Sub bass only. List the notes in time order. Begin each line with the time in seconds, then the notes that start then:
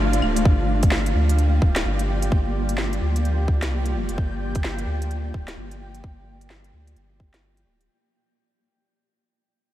Already playing: G1
0.22 D1
0.45 G1
1.15 D2
1.62 D1
1.85 G1
2.32 G1
3.02 D2
3.62 C2
3.94 F1
4.09 F1
4.18 G1
4.87 D2
5.34 D1
5.57 G1
6.04 G1
6.73 D2
6.97 G1
7.66 D1